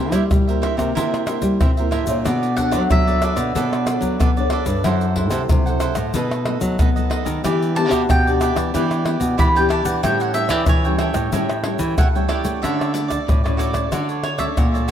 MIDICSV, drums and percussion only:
0, 0, Header, 1, 4, 480
1, 0, Start_track
1, 0, Key_signature, 2, "major"
1, 0, Tempo, 647948
1, 1673, Time_signature, 4, 2, 24, 8
1, 11045, End_track
2, 0, Start_track
2, 0, Title_t, "Pandeiro"
2, 90, Note_on_c, 9, 54, 60
2, 164, Note_off_c, 9, 54, 0
2, 228, Note_on_c, 9, 54, 75
2, 303, Note_off_c, 9, 54, 0
2, 360, Note_on_c, 9, 54, 35
2, 434, Note_off_c, 9, 54, 0
2, 467, Note_on_c, 9, 54, 74
2, 541, Note_off_c, 9, 54, 0
2, 584, Note_on_c, 9, 54, 59
2, 658, Note_off_c, 9, 54, 0
2, 718, Note_on_c, 9, 54, 87
2, 792, Note_off_c, 9, 54, 0
2, 843, Note_on_c, 9, 54, 36
2, 917, Note_off_c, 9, 54, 0
2, 940, Note_on_c, 9, 54, 66
2, 1014, Note_off_c, 9, 54, 0
2, 1050, Note_on_c, 9, 54, 62
2, 1125, Note_off_c, 9, 54, 0
2, 1190, Note_on_c, 9, 54, 82
2, 1264, Note_off_c, 9, 54, 0
2, 1313, Note_on_c, 9, 54, 34
2, 1388, Note_off_c, 9, 54, 0
2, 1422, Note_on_c, 9, 54, 67
2, 1496, Note_off_c, 9, 54, 0
2, 1531, Note_on_c, 9, 54, 61
2, 1605, Note_off_c, 9, 54, 0
2, 1671, Note_on_c, 9, 54, 82
2, 1745, Note_off_c, 9, 54, 0
2, 1799, Note_on_c, 9, 54, 33
2, 1873, Note_off_c, 9, 54, 0
2, 1906, Note_on_c, 9, 54, 68
2, 1980, Note_off_c, 9, 54, 0
2, 2016, Note_on_c, 9, 54, 58
2, 2090, Note_off_c, 9, 54, 0
2, 2152, Note_on_c, 9, 54, 82
2, 2226, Note_off_c, 9, 54, 0
2, 2278, Note_on_c, 9, 54, 35
2, 2352, Note_off_c, 9, 54, 0
2, 2383, Note_on_c, 9, 54, 67
2, 2457, Note_off_c, 9, 54, 0
2, 2495, Note_on_c, 9, 54, 61
2, 2569, Note_off_c, 9, 54, 0
2, 2634, Note_on_c, 9, 54, 82
2, 2708, Note_off_c, 9, 54, 0
2, 2762, Note_on_c, 9, 54, 35
2, 2836, Note_off_c, 9, 54, 0
2, 2864, Note_on_c, 9, 54, 73
2, 2939, Note_off_c, 9, 54, 0
2, 2977, Note_on_c, 9, 54, 61
2, 3051, Note_off_c, 9, 54, 0
2, 3114, Note_on_c, 9, 54, 82
2, 3188, Note_off_c, 9, 54, 0
2, 3236, Note_on_c, 9, 54, 35
2, 3310, Note_off_c, 9, 54, 0
2, 3333, Note_on_c, 9, 54, 73
2, 3407, Note_off_c, 9, 54, 0
2, 3452, Note_on_c, 9, 54, 68
2, 3526, Note_off_c, 9, 54, 0
2, 3587, Note_on_c, 9, 54, 82
2, 3661, Note_off_c, 9, 54, 0
2, 3712, Note_on_c, 9, 54, 35
2, 3786, Note_off_c, 9, 54, 0
2, 3821, Note_on_c, 9, 54, 71
2, 3895, Note_off_c, 9, 54, 0
2, 3930, Note_on_c, 9, 54, 59
2, 4004, Note_off_c, 9, 54, 0
2, 4070, Note_on_c, 9, 54, 83
2, 4144, Note_off_c, 9, 54, 0
2, 4199, Note_on_c, 9, 54, 37
2, 4273, Note_off_c, 9, 54, 0
2, 4298, Note_on_c, 9, 54, 72
2, 4372, Note_off_c, 9, 54, 0
2, 4409, Note_on_c, 9, 54, 61
2, 4483, Note_off_c, 9, 54, 0
2, 4546, Note_on_c, 9, 54, 87
2, 4621, Note_off_c, 9, 54, 0
2, 4678, Note_on_c, 9, 54, 34
2, 4752, Note_off_c, 9, 54, 0
2, 4782, Note_on_c, 9, 54, 70
2, 4856, Note_off_c, 9, 54, 0
2, 4897, Note_on_c, 9, 54, 63
2, 4971, Note_off_c, 9, 54, 0
2, 5031, Note_on_c, 9, 54, 77
2, 5105, Note_off_c, 9, 54, 0
2, 5159, Note_on_c, 9, 54, 33
2, 5234, Note_off_c, 9, 54, 0
2, 5266, Note_on_c, 9, 54, 65
2, 5340, Note_off_c, 9, 54, 0
2, 5380, Note_on_c, 9, 54, 67
2, 5454, Note_off_c, 9, 54, 0
2, 5515, Note_on_c, 9, 54, 83
2, 5589, Note_off_c, 9, 54, 0
2, 5648, Note_on_c, 9, 54, 34
2, 5722, Note_off_c, 9, 54, 0
2, 5750, Note_on_c, 9, 54, 72
2, 5824, Note_off_c, 9, 54, 0
2, 5860, Note_on_c, 9, 54, 61
2, 5934, Note_off_c, 9, 54, 0
2, 5999, Note_on_c, 9, 54, 84
2, 6073, Note_off_c, 9, 54, 0
2, 6130, Note_on_c, 9, 54, 35
2, 6204, Note_off_c, 9, 54, 0
2, 6229, Note_on_c, 9, 54, 70
2, 6303, Note_off_c, 9, 54, 0
2, 6344, Note_on_c, 9, 54, 60
2, 6419, Note_off_c, 9, 54, 0
2, 6479, Note_on_c, 9, 54, 80
2, 6553, Note_off_c, 9, 54, 0
2, 6600, Note_on_c, 9, 54, 35
2, 6674, Note_off_c, 9, 54, 0
2, 6708, Note_on_c, 9, 54, 71
2, 6782, Note_off_c, 9, 54, 0
2, 6822, Note_on_c, 9, 54, 62
2, 6896, Note_off_c, 9, 54, 0
2, 6955, Note_on_c, 9, 54, 79
2, 7029, Note_off_c, 9, 54, 0
2, 7083, Note_on_c, 9, 54, 36
2, 7157, Note_off_c, 9, 54, 0
2, 7188, Note_on_c, 9, 54, 66
2, 7262, Note_off_c, 9, 54, 0
2, 7299, Note_on_c, 9, 54, 65
2, 7373, Note_off_c, 9, 54, 0
2, 7435, Note_on_c, 9, 54, 84
2, 7509, Note_off_c, 9, 54, 0
2, 7556, Note_on_c, 9, 54, 34
2, 7630, Note_off_c, 9, 54, 0
2, 7661, Note_on_c, 9, 54, 77
2, 7735, Note_off_c, 9, 54, 0
2, 7770, Note_on_c, 9, 54, 59
2, 7844, Note_off_c, 9, 54, 0
2, 7900, Note_on_c, 9, 54, 82
2, 7974, Note_off_c, 9, 54, 0
2, 8034, Note_on_c, 9, 54, 32
2, 8109, Note_off_c, 9, 54, 0
2, 8138, Note_on_c, 9, 54, 74
2, 8212, Note_off_c, 9, 54, 0
2, 8254, Note_on_c, 9, 54, 62
2, 8328, Note_off_c, 9, 54, 0
2, 8389, Note_on_c, 9, 54, 89
2, 8463, Note_off_c, 9, 54, 0
2, 8515, Note_on_c, 9, 54, 32
2, 8590, Note_off_c, 9, 54, 0
2, 8620, Note_on_c, 9, 54, 70
2, 8694, Note_off_c, 9, 54, 0
2, 8734, Note_on_c, 9, 54, 60
2, 8808, Note_off_c, 9, 54, 0
2, 8873, Note_on_c, 9, 54, 82
2, 8947, Note_off_c, 9, 54, 0
2, 9004, Note_on_c, 9, 54, 36
2, 9078, Note_off_c, 9, 54, 0
2, 9105, Note_on_c, 9, 54, 66
2, 9179, Note_off_c, 9, 54, 0
2, 9219, Note_on_c, 9, 54, 63
2, 9293, Note_off_c, 9, 54, 0
2, 9364, Note_on_c, 9, 54, 76
2, 9438, Note_off_c, 9, 54, 0
2, 9492, Note_on_c, 9, 54, 33
2, 9566, Note_off_c, 9, 54, 0
2, 9591, Note_on_c, 9, 54, 72
2, 9665, Note_off_c, 9, 54, 0
2, 9708, Note_on_c, 9, 54, 59
2, 9782, Note_off_c, 9, 54, 0
2, 9845, Note_on_c, 9, 54, 72
2, 9919, Note_off_c, 9, 54, 0
2, 9969, Note_on_c, 9, 54, 32
2, 10043, Note_off_c, 9, 54, 0
2, 10072, Note_on_c, 9, 54, 69
2, 10146, Note_off_c, 9, 54, 0
2, 10179, Note_on_c, 9, 54, 54
2, 10253, Note_off_c, 9, 54, 0
2, 10312, Note_on_c, 9, 54, 75
2, 10386, Note_off_c, 9, 54, 0
2, 10437, Note_on_c, 9, 54, 36
2, 10511, Note_off_c, 9, 54, 0
2, 10545, Note_on_c, 9, 54, 67
2, 10619, Note_off_c, 9, 54, 0
2, 10657, Note_on_c, 9, 54, 60
2, 10731, Note_off_c, 9, 54, 0
2, 10796, Note_on_c, 9, 54, 76
2, 10870, Note_off_c, 9, 54, 0
2, 10926, Note_on_c, 9, 54, 31
2, 11000, Note_off_c, 9, 54, 0
2, 11045, End_track
3, 0, Start_track
3, 0, Title_t, "Tamborim"
3, 90, Note_on_c, 9, 60, 77
3, 164, Note_off_c, 9, 60, 0
3, 228, Note_on_c, 9, 60, 82
3, 303, Note_off_c, 9, 60, 0
3, 467, Note_on_c, 9, 60, 83
3, 541, Note_off_c, 9, 60, 0
3, 584, Note_on_c, 9, 60, 79
3, 658, Note_off_c, 9, 60, 0
3, 843, Note_on_c, 9, 60, 82
3, 917, Note_off_c, 9, 60, 0
3, 940, Note_on_c, 9, 60, 89
3, 1014, Note_off_c, 9, 60, 0
3, 1190, Note_on_c, 9, 60, 85
3, 1264, Note_off_c, 9, 60, 0
3, 1422, Note_on_c, 9, 60, 81
3, 1496, Note_off_c, 9, 60, 0
3, 1671, Note_on_c, 9, 60, 83
3, 1745, Note_off_c, 9, 60, 0
3, 2016, Note_on_c, 9, 60, 81
3, 2090, Note_off_c, 9, 60, 0
3, 2152, Note_on_c, 9, 60, 78
3, 2226, Note_off_c, 9, 60, 0
3, 2383, Note_on_c, 9, 60, 82
3, 2457, Note_off_c, 9, 60, 0
3, 2495, Note_on_c, 9, 60, 76
3, 2569, Note_off_c, 9, 60, 0
3, 2762, Note_on_c, 9, 60, 84
3, 2836, Note_off_c, 9, 60, 0
3, 2864, Note_on_c, 9, 60, 84
3, 2939, Note_off_c, 9, 60, 0
3, 3114, Note_on_c, 9, 60, 81
3, 3188, Note_off_c, 9, 60, 0
3, 3333, Note_on_c, 9, 60, 82
3, 3407, Note_off_c, 9, 60, 0
3, 3587, Note_on_c, 9, 60, 79
3, 3661, Note_off_c, 9, 60, 0
3, 3930, Note_on_c, 9, 60, 73
3, 4004, Note_off_c, 9, 60, 0
3, 4070, Note_on_c, 9, 60, 78
3, 4144, Note_off_c, 9, 60, 0
3, 4298, Note_on_c, 9, 60, 86
3, 4372, Note_off_c, 9, 60, 0
3, 4409, Note_on_c, 9, 60, 83
3, 4483, Note_off_c, 9, 60, 0
3, 4678, Note_on_c, 9, 60, 80
3, 4752, Note_off_c, 9, 60, 0
3, 4782, Note_on_c, 9, 60, 85
3, 4856, Note_off_c, 9, 60, 0
3, 5031, Note_on_c, 9, 60, 79
3, 5105, Note_off_c, 9, 60, 0
3, 5266, Note_on_c, 9, 60, 82
3, 5340, Note_off_c, 9, 60, 0
3, 5515, Note_on_c, 9, 60, 82
3, 5589, Note_off_c, 9, 60, 0
3, 5860, Note_on_c, 9, 60, 79
3, 5934, Note_off_c, 9, 60, 0
3, 5999, Note_on_c, 9, 60, 79
3, 6073, Note_off_c, 9, 60, 0
3, 6229, Note_on_c, 9, 60, 86
3, 6303, Note_off_c, 9, 60, 0
3, 6344, Note_on_c, 9, 60, 86
3, 6419, Note_off_c, 9, 60, 0
3, 6600, Note_on_c, 9, 60, 79
3, 6674, Note_off_c, 9, 60, 0
3, 6708, Note_on_c, 9, 60, 84
3, 6782, Note_off_c, 9, 60, 0
3, 6955, Note_on_c, 9, 60, 84
3, 7029, Note_off_c, 9, 60, 0
3, 7188, Note_on_c, 9, 60, 82
3, 7262, Note_off_c, 9, 60, 0
3, 7435, Note_on_c, 9, 60, 85
3, 7509, Note_off_c, 9, 60, 0
3, 7770, Note_on_c, 9, 60, 79
3, 7844, Note_off_c, 9, 60, 0
3, 7900, Note_on_c, 9, 60, 80
3, 7974, Note_off_c, 9, 60, 0
3, 8138, Note_on_c, 9, 60, 87
3, 8212, Note_off_c, 9, 60, 0
3, 8254, Note_on_c, 9, 60, 81
3, 8328, Note_off_c, 9, 60, 0
3, 8515, Note_on_c, 9, 60, 88
3, 8590, Note_off_c, 9, 60, 0
3, 8620, Note_on_c, 9, 60, 80
3, 8694, Note_off_c, 9, 60, 0
3, 8873, Note_on_c, 9, 60, 80
3, 8947, Note_off_c, 9, 60, 0
3, 9105, Note_on_c, 9, 60, 83
3, 9179, Note_off_c, 9, 60, 0
3, 9364, Note_on_c, 9, 60, 77
3, 9438, Note_off_c, 9, 60, 0
3, 9492, Note_on_c, 9, 60, 79
3, 9566, Note_off_c, 9, 60, 0
3, 9708, Note_on_c, 9, 60, 79
3, 9782, Note_off_c, 9, 60, 0
3, 9845, Note_on_c, 9, 60, 75
3, 9919, Note_off_c, 9, 60, 0
3, 9969, Note_on_c, 9, 60, 85
3, 10043, Note_off_c, 9, 60, 0
3, 10179, Note_on_c, 9, 60, 83
3, 10253, Note_off_c, 9, 60, 0
3, 10312, Note_on_c, 9, 60, 75
3, 10386, Note_off_c, 9, 60, 0
3, 10545, Note_on_c, 9, 60, 77
3, 10619, Note_off_c, 9, 60, 0
3, 10657, Note_on_c, 9, 60, 82
3, 10731, Note_off_c, 9, 60, 0
3, 10796, Note_on_c, 9, 60, 73
3, 10870, Note_off_c, 9, 60, 0
3, 11045, End_track
4, 0, Start_track
4, 0, Title_t, "Drums"
4, 90, Note_on_c, 9, 82, 75
4, 90, Note_on_c, 9, 87, 31
4, 164, Note_off_c, 9, 82, 0
4, 164, Note_off_c, 9, 87, 0
4, 228, Note_on_c, 9, 82, 76
4, 228, Note_on_c, 9, 87, 101
4, 303, Note_off_c, 9, 82, 0
4, 303, Note_off_c, 9, 87, 0
4, 360, Note_on_c, 9, 82, 36
4, 434, Note_off_c, 9, 82, 0
4, 584, Note_on_c, 9, 82, 78
4, 584, Note_on_c, 9, 87, 35
4, 658, Note_off_c, 9, 82, 0
4, 658, Note_off_c, 9, 87, 0
4, 718, Note_on_c, 9, 82, 79
4, 718, Note_on_c, 9, 87, 54
4, 792, Note_off_c, 9, 82, 0
4, 792, Note_off_c, 9, 87, 0
4, 843, Note_on_c, 9, 82, 34
4, 917, Note_off_c, 9, 82, 0
4, 940, Note_on_c, 9, 82, 71
4, 1014, Note_off_c, 9, 82, 0
4, 1050, Note_on_c, 9, 82, 83
4, 1050, Note_on_c, 9, 87, 37
4, 1125, Note_off_c, 9, 82, 0
4, 1125, Note_off_c, 9, 87, 0
4, 1190, Note_on_c, 9, 82, 74
4, 1190, Note_on_c, 9, 87, 106
4, 1264, Note_off_c, 9, 82, 0
4, 1264, Note_off_c, 9, 87, 0
4, 1313, Note_on_c, 9, 82, 37
4, 1388, Note_off_c, 9, 82, 0
4, 1531, Note_on_c, 9, 82, 89
4, 1531, Note_on_c, 9, 87, 36
4, 1605, Note_off_c, 9, 82, 0
4, 1605, Note_off_c, 9, 87, 0
4, 1671, Note_on_c, 9, 82, 80
4, 1671, Note_on_c, 9, 87, 59
4, 1745, Note_off_c, 9, 82, 0
4, 1745, Note_off_c, 9, 87, 0
4, 1799, Note_on_c, 9, 82, 32
4, 1873, Note_off_c, 9, 82, 0
4, 1906, Note_on_c, 9, 82, 77
4, 1906, Note_on_c, 9, 87, 33
4, 1980, Note_off_c, 9, 82, 0
4, 1980, Note_off_c, 9, 87, 0
4, 2016, Note_on_c, 9, 82, 78
4, 2016, Note_on_c, 9, 87, 34
4, 2090, Note_off_c, 9, 82, 0
4, 2090, Note_off_c, 9, 87, 0
4, 2152, Note_on_c, 9, 82, 78
4, 2152, Note_on_c, 9, 87, 102
4, 2226, Note_off_c, 9, 82, 0
4, 2226, Note_off_c, 9, 87, 0
4, 2278, Note_on_c, 9, 82, 34
4, 2352, Note_off_c, 9, 82, 0
4, 2383, Note_on_c, 9, 82, 72
4, 2457, Note_off_c, 9, 82, 0
4, 2495, Note_on_c, 9, 82, 82
4, 2495, Note_on_c, 9, 87, 34
4, 2569, Note_off_c, 9, 82, 0
4, 2569, Note_off_c, 9, 87, 0
4, 2634, Note_on_c, 9, 82, 81
4, 2634, Note_on_c, 9, 87, 57
4, 2708, Note_off_c, 9, 82, 0
4, 2708, Note_off_c, 9, 87, 0
4, 2762, Note_on_c, 9, 82, 34
4, 2836, Note_off_c, 9, 82, 0
4, 2864, Note_on_c, 9, 82, 71
4, 2939, Note_off_c, 9, 82, 0
4, 2977, Note_on_c, 9, 82, 88
4, 2977, Note_on_c, 9, 87, 38
4, 3051, Note_off_c, 9, 82, 0
4, 3051, Note_off_c, 9, 87, 0
4, 3114, Note_on_c, 9, 82, 77
4, 3114, Note_on_c, 9, 87, 102
4, 3188, Note_off_c, 9, 82, 0
4, 3188, Note_off_c, 9, 87, 0
4, 3236, Note_on_c, 9, 82, 36
4, 3310, Note_off_c, 9, 82, 0
4, 3452, Note_on_c, 9, 82, 86
4, 3452, Note_on_c, 9, 87, 37
4, 3526, Note_off_c, 9, 82, 0
4, 3526, Note_off_c, 9, 87, 0
4, 3587, Note_on_c, 9, 82, 80
4, 3587, Note_on_c, 9, 87, 59
4, 3661, Note_off_c, 9, 82, 0
4, 3661, Note_off_c, 9, 87, 0
4, 3712, Note_on_c, 9, 82, 32
4, 3786, Note_off_c, 9, 82, 0
4, 3821, Note_on_c, 9, 87, 36
4, 3895, Note_off_c, 9, 87, 0
4, 3930, Note_on_c, 9, 82, 77
4, 3930, Note_on_c, 9, 87, 35
4, 4004, Note_off_c, 9, 82, 0
4, 4004, Note_off_c, 9, 87, 0
4, 4070, Note_on_c, 9, 82, 87
4, 4070, Note_on_c, 9, 87, 105
4, 4144, Note_off_c, 9, 82, 0
4, 4144, Note_off_c, 9, 87, 0
4, 4199, Note_on_c, 9, 82, 35
4, 4273, Note_off_c, 9, 82, 0
4, 4298, Note_on_c, 9, 82, 71
4, 4372, Note_off_c, 9, 82, 0
4, 4409, Note_on_c, 9, 82, 74
4, 4409, Note_on_c, 9, 87, 35
4, 4483, Note_off_c, 9, 82, 0
4, 4483, Note_off_c, 9, 87, 0
4, 4546, Note_on_c, 9, 82, 81
4, 4546, Note_on_c, 9, 87, 61
4, 4621, Note_off_c, 9, 82, 0
4, 4621, Note_off_c, 9, 87, 0
4, 4678, Note_on_c, 9, 82, 33
4, 4752, Note_off_c, 9, 82, 0
4, 4897, Note_on_c, 9, 82, 87
4, 4897, Note_on_c, 9, 87, 38
4, 4971, Note_off_c, 9, 82, 0
4, 4971, Note_off_c, 9, 87, 0
4, 5031, Note_on_c, 9, 82, 81
4, 5031, Note_on_c, 9, 87, 104
4, 5105, Note_off_c, 9, 82, 0
4, 5105, Note_off_c, 9, 87, 0
4, 5159, Note_on_c, 9, 82, 36
4, 5234, Note_off_c, 9, 82, 0
4, 5380, Note_on_c, 9, 82, 86
4, 5380, Note_on_c, 9, 87, 37
4, 5454, Note_off_c, 9, 82, 0
4, 5454, Note_off_c, 9, 87, 0
4, 5515, Note_on_c, 9, 82, 87
4, 5515, Note_on_c, 9, 87, 60
4, 5589, Note_off_c, 9, 82, 0
4, 5589, Note_off_c, 9, 87, 0
4, 5648, Note_on_c, 9, 82, 31
4, 5722, Note_off_c, 9, 82, 0
4, 5860, Note_on_c, 9, 82, 80
4, 5860, Note_on_c, 9, 87, 32
4, 5934, Note_off_c, 9, 82, 0
4, 5934, Note_off_c, 9, 87, 0
4, 5999, Note_on_c, 9, 82, 85
4, 5999, Note_on_c, 9, 87, 95
4, 6073, Note_off_c, 9, 82, 0
4, 6073, Note_off_c, 9, 87, 0
4, 6130, Note_on_c, 9, 82, 36
4, 6204, Note_off_c, 9, 82, 0
4, 6229, Note_on_c, 9, 82, 77
4, 6303, Note_off_c, 9, 82, 0
4, 6344, Note_on_c, 9, 82, 77
4, 6344, Note_on_c, 9, 87, 34
4, 6419, Note_off_c, 9, 82, 0
4, 6419, Note_off_c, 9, 87, 0
4, 6479, Note_on_c, 9, 82, 83
4, 6479, Note_on_c, 9, 87, 62
4, 6553, Note_off_c, 9, 82, 0
4, 6553, Note_off_c, 9, 87, 0
4, 6600, Note_on_c, 9, 82, 36
4, 6674, Note_off_c, 9, 82, 0
4, 6822, Note_on_c, 9, 82, 86
4, 6822, Note_on_c, 9, 87, 36
4, 6896, Note_off_c, 9, 82, 0
4, 6896, Note_off_c, 9, 87, 0
4, 6955, Note_on_c, 9, 82, 88
4, 6955, Note_on_c, 9, 87, 98
4, 7029, Note_off_c, 9, 82, 0
4, 7029, Note_off_c, 9, 87, 0
4, 7083, Note_on_c, 9, 82, 36
4, 7157, Note_off_c, 9, 82, 0
4, 7299, Note_on_c, 9, 82, 92
4, 7299, Note_on_c, 9, 87, 39
4, 7373, Note_off_c, 9, 82, 0
4, 7373, Note_off_c, 9, 87, 0
4, 7435, Note_on_c, 9, 82, 84
4, 7435, Note_on_c, 9, 87, 60
4, 7509, Note_off_c, 9, 82, 0
4, 7509, Note_off_c, 9, 87, 0
4, 7556, Note_on_c, 9, 82, 35
4, 7630, Note_off_c, 9, 82, 0
4, 7661, Note_on_c, 9, 82, 73
4, 7735, Note_off_c, 9, 82, 0
4, 7770, Note_on_c, 9, 82, 73
4, 7770, Note_on_c, 9, 87, 31
4, 7844, Note_off_c, 9, 82, 0
4, 7844, Note_off_c, 9, 87, 0
4, 7900, Note_on_c, 9, 82, 83
4, 7900, Note_on_c, 9, 87, 101
4, 7974, Note_off_c, 9, 82, 0
4, 7974, Note_off_c, 9, 87, 0
4, 8034, Note_on_c, 9, 82, 33
4, 8109, Note_off_c, 9, 82, 0
4, 8254, Note_on_c, 9, 82, 85
4, 8254, Note_on_c, 9, 87, 37
4, 8328, Note_off_c, 9, 82, 0
4, 8328, Note_off_c, 9, 87, 0
4, 8389, Note_on_c, 9, 82, 90
4, 8389, Note_on_c, 9, 87, 61
4, 8463, Note_off_c, 9, 82, 0
4, 8463, Note_off_c, 9, 87, 0
4, 8515, Note_on_c, 9, 82, 33
4, 8590, Note_off_c, 9, 82, 0
4, 8734, Note_on_c, 9, 82, 92
4, 8734, Note_on_c, 9, 87, 36
4, 8808, Note_off_c, 9, 82, 0
4, 8808, Note_off_c, 9, 87, 0
4, 8873, Note_on_c, 9, 82, 82
4, 8873, Note_on_c, 9, 87, 109
4, 8947, Note_off_c, 9, 82, 0
4, 8947, Note_off_c, 9, 87, 0
4, 9004, Note_on_c, 9, 82, 36
4, 9078, Note_off_c, 9, 82, 0
4, 9219, Note_on_c, 9, 82, 92
4, 9219, Note_on_c, 9, 87, 36
4, 9293, Note_off_c, 9, 82, 0
4, 9293, Note_off_c, 9, 87, 0
4, 9364, Note_on_c, 9, 82, 73
4, 9364, Note_on_c, 9, 87, 56
4, 9438, Note_off_c, 9, 82, 0
4, 9438, Note_off_c, 9, 87, 0
4, 9492, Note_on_c, 9, 82, 33
4, 9566, Note_off_c, 9, 82, 0
4, 9591, Note_on_c, 9, 82, 67
4, 9665, Note_off_c, 9, 82, 0
4, 9708, Note_on_c, 9, 82, 74
4, 9708, Note_on_c, 9, 87, 34
4, 9782, Note_off_c, 9, 82, 0
4, 9782, Note_off_c, 9, 87, 0
4, 9845, Note_on_c, 9, 82, 76
4, 9845, Note_on_c, 9, 87, 103
4, 9919, Note_off_c, 9, 82, 0
4, 9919, Note_off_c, 9, 87, 0
4, 9969, Note_on_c, 9, 82, 35
4, 10043, Note_off_c, 9, 82, 0
4, 10072, Note_on_c, 9, 82, 71
4, 10072, Note_on_c, 9, 87, 31
4, 10146, Note_off_c, 9, 82, 0
4, 10146, Note_off_c, 9, 87, 0
4, 10179, Note_on_c, 9, 82, 72
4, 10179, Note_on_c, 9, 87, 31
4, 10253, Note_off_c, 9, 82, 0
4, 10253, Note_off_c, 9, 87, 0
4, 10312, Note_on_c, 9, 82, 78
4, 10312, Note_on_c, 9, 87, 57
4, 10386, Note_off_c, 9, 82, 0
4, 10386, Note_off_c, 9, 87, 0
4, 10437, Note_on_c, 9, 82, 32
4, 10511, Note_off_c, 9, 82, 0
4, 10657, Note_on_c, 9, 82, 82
4, 10657, Note_on_c, 9, 87, 35
4, 10731, Note_off_c, 9, 82, 0
4, 10731, Note_off_c, 9, 87, 0
4, 10796, Note_on_c, 9, 82, 77
4, 10796, Note_on_c, 9, 87, 93
4, 10870, Note_off_c, 9, 82, 0
4, 10870, Note_off_c, 9, 87, 0
4, 10926, Note_on_c, 9, 82, 33
4, 11000, Note_off_c, 9, 82, 0
4, 11045, End_track
0, 0, End_of_file